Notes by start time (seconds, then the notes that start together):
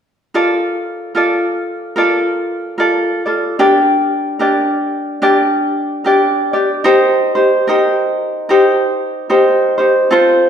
0.34 F4 A4 A#4 D5
1.15 F4 A4 A#4 D5
1.96 F4 A4 A#4 D5
2.78 F4 A4 A#4 D5
3.26 F4 A4 D5
3.59 D4 G4 A#4 D5
4.39 D4 G4 A#4 D5
5.22 D4 G4 A#4 D5
6.04 D4 G4 A#4 D5
6.53 D4 G4 D5
6.84 D#4 G4 A#4 C5
7.35 D#4 G4 C5
7.67 D#4 G4 A#4 C5
8.49 D#4 G4 A#4 C5
9.30 D#4 G4 A#4 C5
9.78 D#4 G4 C5
10.11 C4 F4 A4 C5